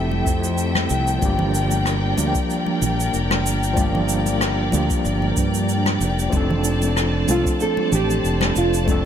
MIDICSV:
0, 0, Header, 1, 6, 480
1, 0, Start_track
1, 0, Tempo, 638298
1, 919, Time_signature, 4, 2, 24, 8
1, 6807, End_track
2, 0, Start_track
2, 0, Title_t, "String section"
2, 0, Program_c, 0, 48
2, 0, Note_on_c, 0, 53, 73
2, 0, Note_on_c, 0, 69, 66
2, 0, Note_on_c, 0, 76, 65
2, 0, Note_on_c, 0, 79, 85
2, 887, Note_off_c, 0, 69, 0
2, 888, Note_off_c, 0, 76, 0
2, 918, Note_on_c, 0, 70, 74
2, 920, Note_on_c, 0, 74, 70
2, 4727, Note_off_c, 0, 79, 0
2, 4728, Note_off_c, 0, 70, 0
2, 4760, Note_on_c, 0, 81, 82
2, 4761, Note_on_c, 0, 72, 69
2, 6807, Note_off_c, 0, 53, 0
2, 6807, Note_off_c, 0, 72, 0
2, 6807, Note_off_c, 0, 74, 0
2, 6807, Note_off_c, 0, 81, 0
2, 6807, End_track
3, 0, Start_track
3, 0, Title_t, "Nylon-string guitar"
3, 0, Program_c, 1, 24
3, 5494, Note_on_c, 1, 65, 88
3, 5726, Note_off_c, 1, 65, 0
3, 5729, Note_on_c, 1, 69, 112
3, 5971, Note_off_c, 1, 69, 0
3, 5974, Note_on_c, 1, 67, 90
3, 6445, Note_off_c, 1, 67, 0
3, 6448, Note_on_c, 1, 65, 85
3, 6807, Note_off_c, 1, 65, 0
3, 6807, End_track
4, 0, Start_track
4, 0, Title_t, "Tine electric piano"
4, 0, Program_c, 2, 4
4, 0, Control_c, 2, 64, 127
4, 0, Note_on_c, 2, 53, 61
4, 0, Note_on_c, 2, 57, 62
4, 0, Note_on_c, 2, 60, 58
4, 0, Note_on_c, 2, 64, 61
4, 0, Note_on_c, 2, 67, 69
4, 888, Note_off_c, 2, 53, 0
4, 888, Note_on_c, 2, 53, 90
4, 901, Note_on_c, 2, 55, 81
4, 916, Note_on_c, 2, 58, 77
4, 929, Control_c, 2, 64, 0
4, 929, Note_on_c, 2, 62, 82
4, 930, Note_off_c, 2, 64, 0
4, 931, Note_off_c, 2, 57, 0
4, 934, Note_off_c, 2, 67, 0
4, 935, Note_off_c, 2, 60, 0
4, 943, Note_on_c, 2, 67, 99
4, 1054, Control_c, 2, 64, 127
4, 1597, Note_off_c, 2, 53, 0
4, 1603, Note_off_c, 2, 55, 0
4, 1611, Note_off_c, 2, 58, 0
4, 1617, Note_off_c, 2, 62, 0
4, 1623, Note_on_c, 2, 53, 64
4, 1624, Note_off_c, 2, 67, 0
4, 1630, Note_on_c, 2, 55, 64
4, 1637, Note_on_c, 2, 58, 62
4, 1643, Note_on_c, 2, 62, 61
4, 1652, Note_on_c, 2, 67, 72
4, 1763, Note_off_c, 2, 53, 0
4, 1767, Note_off_c, 2, 55, 0
4, 1771, Note_off_c, 2, 58, 0
4, 1774, Note_off_c, 2, 62, 0
4, 1778, Note_off_c, 2, 67, 0
4, 2807, Note_on_c, 2, 53, 92
4, 2823, Note_on_c, 2, 55, 86
4, 2837, Note_on_c, 2, 58, 79
4, 2851, Note_on_c, 2, 62, 80
4, 2864, Note_on_c, 2, 67, 99
4, 3517, Note_off_c, 2, 53, 0
4, 3524, Note_off_c, 2, 55, 0
4, 3531, Note_off_c, 2, 58, 0
4, 3538, Note_off_c, 2, 62, 0
4, 3542, Note_on_c, 2, 53, 68
4, 3545, Note_off_c, 2, 67, 0
4, 3549, Note_on_c, 2, 55, 62
4, 3555, Note_on_c, 2, 58, 58
4, 3564, Note_on_c, 2, 62, 58
4, 3571, Note_on_c, 2, 67, 73
4, 3683, Note_off_c, 2, 53, 0
4, 3686, Note_off_c, 2, 55, 0
4, 3689, Note_off_c, 2, 58, 0
4, 3694, Note_off_c, 2, 62, 0
4, 3697, Note_off_c, 2, 67, 0
4, 4731, Note_on_c, 2, 53, 86
4, 4744, Note_on_c, 2, 57, 84
4, 4757, Note_on_c, 2, 60, 85
4, 4768, Control_c, 2, 64, 0
4, 4772, Note_on_c, 2, 62, 87
4, 4786, Note_on_c, 2, 69, 103
4, 4886, Control_c, 2, 64, 127
4, 5438, Note_off_c, 2, 53, 0
4, 5445, Note_off_c, 2, 57, 0
4, 5451, Note_off_c, 2, 60, 0
4, 5459, Note_off_c, 2, 62, 0
4, 5464, Note_on_c, 2, 53, 67
4, 5466, Note_off_c, 2, 69, 0
4, 5471, Note_on_c, 2, 57, 63
4, 5479, Note_on_c, 2, 60, 65
4, 5486, Note_on_c, 2, 62, 62
4, 5494, Note_on_c, 2, 69, 77
4, 5604, Note_off_c, 2, 53, 0
4, 5608, Note_off_c, 2, 57, 0
4, 5611, Note_off_c, 2, 60, 0
4, 5615, Note_off_c, 2, 62, 0
4, 5619, Note_off_c, 2, 69, 0
4, 6650, Note_on_c, 2, 53, 86
4, 6664, Note_on_c, 2, 57, 89
4, 6677, Note_on_c, 2, 60, 77
4, 6690, Note_on_c, 2, 62, 84
4, 6705, Note_on_c, 2, 69, 96
4, 6807, Note_off_c, 2, 53, 0
4, 6807, Note_off_c, 2, 57, 0
4, 6807, Note_off_c, 2, 60, 0
4, 6807, Note_off_c, 2, 62, 0
4, 6807, Note_off_c, 2, 69, 0
4, 6807, End_track
5, 0, Start_track
5, 0, Title_t, "Fretless electric bass"
5, 0, Program_c, 3, 35
5, 0, Note_on_c, 3, 29, 86
5, 156, Note_off_c, 3, 29, 0
5, 198, Note_on_c, 3, 41, 85
5, 644, Note_off_c, 3, 41, 0
5, 680, Note_on_c, 3, 36, 97
5, 876, Note_off_c, 3, 36, 0
5, 917, Note_on_c, 3, 31, 98
5, 1603, Note_off_c, 3, 31, 0
5, 1639, Note_on_c, 3, 38, 80
5, 1743, Note_off_c, 3, 38, 0
5, 2120, Note_on_c, 3, 34, 94
5, 2316, Note_off_c, 3, 34, 0
5, 2359, Note_on_c, 3, 29, 78
5, 2598, Note_off_c, 3, 29, 0
5, 2598, Note_on_c, 3, 31, 86
5, 3524, Note_off_c, 3, 31, 0
5, 3559, Note_on_c, 3, 38, 81
5, 3663, Note_off_c, 3, 38, 0
5, 3798, Note_on_c, 3, 31, 84
5, 3995, Note_off_c, 3, 31, 0
5, 4038, Note_on_c, 3, 43, 83
5, 4484, Note_off_c, 3, 43, 0
5, 4516, Note_on_c, 3, 29, 92
5, 4715, Note_off_c, 3, 29, 0
5, 4758, Note_on_c, 3, 29, 95
5, 5444, Note_off_c, 3, 29, 0
5, 5477, Note_on_c, 3, 36, 83
5, 5582, Note_off_c, 3, 36, 0
5, 5958, Note_on_c, 3, 33, 91
5, 6155, Note_off_c, 3, 33, 0
5, 6197, Note_on_c, 3, 29, 73
5, 6395, Note_off_c, 3, 29, 0
5, 6438, Note_on_c, 3, 29, 85
5, 6807, Note_off_c, 3, 29, 0
5, 6807, End_track
6, 0, Start_track
6, 0, Title_t, "Drums"
6, 85, Note_on_c, 9, 63, 54
6, 160, Note_off_c, 9, 63, 0
6, 197, Note_on_c, 9, 36, 105
6, 201, Note_on_c, 9, 69, 80
6, 272, Note_off_c, 9, 36, 0
6, 276, Note_off_c, 9, 69, 0
6, 329, Note_on_c, 9, 69, 59
6, 405, Note_off_c, 9, 69, 0
6, 435, Note_on_c, 9, 69, 51
6, 510, Note_off_c, 9, 69, 0
6, 565, Note_on_c, 9, 37, 73
6, 567, Note_on_c, 9, 63, 85
6, 640, Note_off_c, 9, 37, 0
6, 642, Note_off_c, 9, 63, 0
6, 673, Note_on_c, 9, 69, 69
6, 748, Note_off_c, 9, 69, 0
6, 806, Note_on_c, 9, 69, 57
6, 881, Note_off_c, 9, 69, 0
6, 916, Note_on_c, 9, 36, 112
6, 918, Note_on_c, 9, 69, 49
6, 919, Note_on_c, 9, 63, 78
6, 991, Note_off_c, 9, 36, 0
6, 994, Note_off_c, 9, 63, 0
6, 994, Note_off_c, 9, 69, 0
6, 1043, Note_on_c, 9, 64, 84
6, 1118, Note_off_c, 9, 64, 0
6, 1161, Note_on_c, 9, 69, 81
6, 1236, Note_off_c, 9, 69, 0
6, 1285, Note_on_c, 9, 69, 54
6, 1287, Note_on_c, 9, 63, 67
6, 1360, Note_off_c, 9, 69, 0
6, 1362, Note_off_c, 9, 63, 0
6, 1395, Note_on_c, 9, 37, 69
6, 1400, Note_on_c, 9, 69, 45
6, 1470, Note_off_c, 9, 37, 0
6, 1475, Note_off_c, 9, 69, 0
6, 1635, Note_on_c, 9, 63, 83
6, 1640, Note_on_c, 9, 69, 90
6, 1710, Note_off_c, 9, 63, 0
6, 1715, Note_off_c, 9, 69, 0
6, 1765, Note_on_c, 9, 36, 90
6, 1765, Note_on_c, 9, 69, 63
6, 1840, Note_off_c, 9, 36, 0
6, 1841, Note_off_c, 9, 69, 0
6, 1880, Note_on_c, 9, 69, 46
6, 1956, Note_off_c, 9, 69, 0
6, 2004, Note_on_c, 9, 63, 65
6, 2079, Note_off_c, 9, 63, 0
6, 2120, Note_on_c, 9, 64, 72
6, 2121, Note_on_c, 9, 69, 78
6, 2195, Note_off_c, 9, 64, 0
6, 2197, Note_off_c, 9, 69, 0
6, 2255, Note_on_c, 9, 69, 61
6, 2330, Note_off_c, 9, 69, 0
6, 2360, Note_on_c, 9, 69, 48
6, 2435, Note_off_c, 9, 69, 0
6, 2487, Note_on_c, 9, 37, 65
6, 2490, Note_on_c, 9, 63, 93
6, 2562, Note_off_c, 9, 37, 0
6, 2565, Note_off_c, 9, 63, 0
6, 2603, Note_on_c, 9, 69, 89
6, 2678, Note_off_c, 9, 69, 0
6, 2730, Note_on_c, 9, 69, 60
6, 2805, Note_off_c, 9, 69, 0
6, 2835, Note_on_c, 9, 63, 89
6, 2835, Note_on_c, 9, 69, 53
6, 2836, Note_on_c, 9, 36, 104
6, 2910, Note_off_c, 9, 63, 0
6, 2910, Note_off_c, 9, 69, 0
6, 2911, Note_off_c, 9, 36, 0
6, 2969, Note_on_c, 9, 64, 76
6, 3044, Note_off_c, 9, 64, 0
6, 3073, Note_on_c, 9, 69, 79
6, 3148, Note_off_c, 9, 69, 0
6, 3206, Note_on_c, 9, 63, 67
6, 3206, Note_on_c, 9, 69, 58
6, 3281, Note_off_c, 9, 63, 0
6, 3281, Note_off_c, 9, 69, 0
6, 3315, Note_on_c, 9, 37, 71
6, 3318, Note_on_c, 9, 69, 47
6, 3390, Note_off_c, 9, 37, 0
6, 3393, Note_off_c, 9, 69, 0
6, 3551, Note_on_c, 9, 63, 90
6, 3559, Note_on_c, 9, 69, 90
6, 3627, Note_off_c, 9, 63, 0
6, 3634, Note_off_c, 9, 69, 0
6, 3686, Note_on_c, 9, 69, 55
6, 3687, Note_on_c, 9, 36, 92
6, 3761, Note_off_c, 9, 69, 0
6, 3762, Note_off_c, 9, 36, 0
6, 3798, Note_on_c, 9, 69, 43
6, 3873, Note_off_c, 9, 69, 0
6, 3927, Note_on_c, 9, 63, 57
6, 4002, Note_off_c, 9, 63, 0
6, 4035, Note_on_c, 9, 69, 84
6, 4037, Note_on_c, 9, 36, 105
6, 4111, Note_off_c, 9, 69, 0
6, 4112, Note_off_c, 9, 36, 0
6, 4167, Note_on_c, 9, 69, 58
6, 4242, Note_off_c, 9, 69, 0
6, 4277, Note_on_c, 9, 69, 46
6, 4352, Note_off_c, 9, 69, 0
6, 4406, Note_on_c, 9, 37, 65
6, 4407, Note_on_c, 9, 63, 91
6, 4481, Note_off_c, 9, 37, 0
6, 4482, Note_off_c, 9, 63, 0
6, 4518, Note_on_c, 9, 69, 85
6, 4593, Note_off_c, 9, 69, 0
6, 4654, Note_on_c, 9, 69, 51
6, 4729, Note_off_c, 9, 69, 0
6, 4756, Note_on_c, 9, 63, 90
6, 4756, Note_on_c, 9, 69, 46
6, 4757, Note_on_c, 9, 36, 109
6, 4831, Note_off_c, 9, 63, 0
6, 4832, Note_off_c, 9, 36, 0
6, 4832, Note_off_c, 9, 69, 0
6, 4891, Note_on_c, 9, 64, 80
6, 4966, Note_off_c, 9, 64, 0
6, 4994, Note_on_c, 9, 69, 82
6, 5069, Note_off_c, 9, 69, 0
6, 5127, Note_on_c, 9, 63, 58
6, 5127, Note_on_c, 9, 69, 55
6, 5202, Note_off_c, 9, 63, 0
6, 5202, Note_off_c, 9, 69, 0
6, 5238, Note_on_c, 9, 37, 64
6, 5242, Note_on_c, 9, 69, 42
6, 5313, Note_off_c, 9, 37, 0
6, 5317, Note_off_c, 9, 69, 0
6, 5475, Note_on_c, 9, 63, 84
6, 5476, Note_on_c, 9, 69, 94
6, 5550, Note_off_c, 9, 63, 0
6, 5551, Note_off_c, 9, 69, 0
6, 5606, Note_on_c, 9, 36, 93
6, 5613, Note_on_c, 9, 69, 57
6, 5682, Note_off_c, 9, 36, 0
6, 5688, Note_off_c, 9, 69, 0
6, 5716, Note_on_c, 9, 69, 45
6, 5791, Note_off_c, 9, 69, 0
6, 5845, Note_on_c, 9, 63, 65
6, 5920, Note_off_c, 9, 63, 0
6, 5958, Note_on_c, 9, 64, 67
6, 5958, Note_on_c, 9, 69, 80
6, 6033, Note_off_c, 9, 64, 0
6, 6034, Note_off_c, 9, 69, 0
6, 6092, Note_on_c, 9, 69, 54
6, 6167, Note_off_c, 9, 69, 0
6, 6202, Note_on_c, 9, 69, 45
6, 6277, Note_off_c, 9, 69, 0
6, 6323, Note_on_c, 9, 63, 84
6, 6326, Note_on_c, 9, 37, 66
6, 6398, Note_off_c, 9, 63, 0
6, 6401, Note_off_c, 9, 37, 0
6, 6435, Note_on_c, 9, 69, 81
6, 6510, Note_off_c, 9, 69, 0
6, 6570, Note_on_c, 9, 69, 57
6, 6645, Note_off_c, 9, 69, 0
6, 6675, Note_on_c, 9, 63, 80
6, 6676, Note_on_c, 9, 36, 102
6, 6680, Note_on_c, 9, 69, 45
6, 6750, Note_off_c, 9, 63, 0
6, 6751, Note_off_c, 9, 36, 0
6, 6756, Note_off_c, 9, 69, 0
6, 6807, End_track
0, 0, End_of_file